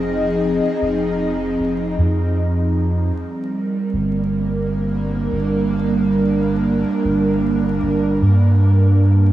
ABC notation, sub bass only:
X:1
M:4/4
L:1/16
Q:"Swing 16ths" 1/4=77
K:Gphr
V:1 name="Sub bass" clef=bass
F,,,3 z F,,,4 F,,,2 F,,6 | z4 G,,,6- G,,, G,,,4- G,,,- | G,,,3 z G,,,4 G,,,2 G,,6 |]